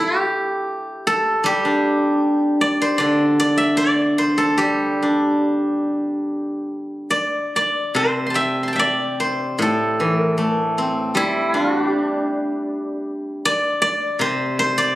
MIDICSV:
0, 0, Header, 1, 2, 480
1, 0, Start_track
1, 0, Tempo, 776197
1, 899, Time_signature, 4, 2, 24, 8
1, 2354, Tempo, 814111
1, 3794, Tempo, 859599
1, 4754, Tempo, 816327
1, 5714, Tempo, 768246
1, 9057, End_track
2, 0, Start_track
2, 0, Title_t, "Guzheng"
2, 0, Program_c, 0, 107
2, 0, Note_on_c, 0, 64, 52
2, 0, Note_on_c, 0, 69, 51
2, 113, Note_off_c, 0, 64, 0
2, 113, Note_on_c, 0, 67, 52
2, 659, Note_off_c, 0, 69, 0
2, 661, Note_on_c, 0, 69, 61
2, 889, Note_on_c, 0, 55, 47
2, 899, Note_off_c, 0, 67, 0
2, 901, Note_on_c, 0, 67, 70
2, 1020, Note_on_c, 0, 62, 37
2, 1615, Note_on_c, 0, 74, 64
2, 1741, Note_on_c, 0, 72, 69
2, 1840, Note_off_c, 0, 74, 0
2, 1843, Note_on_c, 0, 74, 78
2, 1853, Note_on_c, 0, 50, 50
2, 1988, Note_off_c, 0, 62, 0
2, 2017, Note_off_c, 0, 69, 0
2, 2098, Note_off_c, 0, 74, 0
2, 2100, Note_on_c, 0, 74, 83
2, 2211, Note_on_c, 0, 76, 81
2, 2328, Note_off_c, 0, 74, 0
2, 2331, Note_on_c, 0, 74, 88
2, 2348, Note_off_c, 0, 55, 0
2, 2357, Note_off_c, 0, 67, 0
2, 2573, Note_off_c, 0, 72, 0
2, 2575, Note_on_c, 0, 72, 75
2, 2690, Note_on_c, 0, 69, 71
2, 2807, Note_on_c, 0, 67, 62
2, 2814, Note_on_c, 0, 55, 47
2, 3072, Note_on_c, 0, 62, 37
2, 3231, Note_off_c, 0, 76, 0
2, 3301, Note_off_c, 0, 50, 0
2, 3420, Note_off_c, 0, 74, 0
2, 3743, Note_off_c, 0, 72, 0
2, 3973, Note_off_c, 0, 69, 0
2, 4031, Note_off_c, 0, 62, 0
2, 4243, Note_off_c, 0, 67, 0
2, 4268, Note_off_c, 0, 55, 0
2, 4272, Note_on_c, 0, 74, 58
2, 4524, Note_off_c, 0, 74, 0
2, 4526, Note_on_c, 0, 74, 59
2, 4741, Note_on_c, 0, 48, 43
2, 4750, Note_on_c, 0, 72, 65
2, 4929, Note_on_c, 0, 84, 33
2, 4950, Note_on_c, 0, 81, 38
2, 4973, Note_on_c, 0, 79, 40
2, 4980, Note_on_c, 0, 76, 72
2, 5141, Note_off_c, 0, 84, 0
2, 5144, Note_on_c, 0, 84, 32
2, 5169, Note_off_c, 0, 81, 0
2, 5171, Note_on_c, 0, 81, 38
2, 5198, Note_off_c, 0, 79, 0
2, 5200, Note_on_c, 0, 79, 40
2, 5215, Note_off_c, 0, 76, 0
2, 5218, Note_on_c, 0, 76, 44
2, 5237, Note_off_c, 0, 74, 0
2, 5240, Note_on_c, 0, 74, 75
2, 5475, Note_off_c, 0, 72, 0
2, 5478, Note_on_c, 0, 72, 65
2, 5705, Note_on_c, 0, 45, 46
2, 5707, Note_off_c, 0, 48, 0
2, 5727, Note_on_c, 0, 69, 60
2, 5924, Note_off_c, 0, 84, 0
2, 5963, Note_on_c, 0, 52, 37
2, 6041, Note_off_c, 0, 81, 0
2, 6058, Note_off_c, 0, 69, 0
2, 6058, Note_on_c, 0, 70, 60
2, 6138, Note_off_c, 0, 79, 0
2, 6151, Note_off_c, 0, 70, 0
2, 6151, Note_on_c, 0, 69, 60
2, 6199, Note_on_c, 0, 57, 38
2, 6251, Note_off_c, 0, 69, 0
2, 6251, Note_on_c, 0, 70, 60
2, 6261, Note_off_c, 0, 76, 0
2, 6339, Note_off_c, 0, 70, 0
2, 6339, Note_on_c, 0, 69, 60
2, 6363, Note_off_c, 0, 74, 0
2, 6451, Note_on_c, 0, 60, 37
2, 6680, Note_on_c, 0, 55, 50
2, 6693, Note_on_c, 0, 64, 75
2, 6700, Note_off_c, 0, 72, 0
2, 6912, Note_off_c, 0, 64, 0
2, 6912, Note_on_c, 0, 65, 75
2, 6924, Note_on_c, 0, 62, 38
2, 6926, Note_off_c, 0, 52, 0
2, 7024, Note_off_c, 0, 65, 0
2, 7024, Note_on_c, 0, 66, 75
2, 7097, Note_off_c, 0, 69, 0
2, 7131, Note_off_c, 0, 66, 0
2, 7131, Note_on_c, 0, 67, 75
2, 7156, Note_off_c, 0, 45, 0
2, 7159, Note_off_c, 0, 57, 0
2, 7401, Note_off_c, 0, 60, 0
2, 7873, Note_off_c, 0, 62, 0
2, 8113, Note_off_c, 0, 55, 0
2, 8121, Note_on_c, 0, 74, 82
2, 8164, Note_off_c, 0, 67, 0
2, 8346, Note_off_c, 0, 74, 0
2, 8348, Note_on_c, 0, 74, 78
2, 8582, Note_on_c, 0, 48, 53
2, 8594, Note_on_c, 0, 72, 80
2, 8829, Note_off_c, 0, 72, 0
2, 8832, Note_on_c, 0, 72, 83
2, 8946, Note_off_c, 0, 74, 0
2, 8948, Note_on_c, 0, 74, 77
2, 9057, Note_off_c, 0, 48, 0
2, 9057, Note_off_c, 0, 72, 0
2, 9057, Note_off_c, 0, 74, 0
2, 9057, End_track
0, 0, End_of_file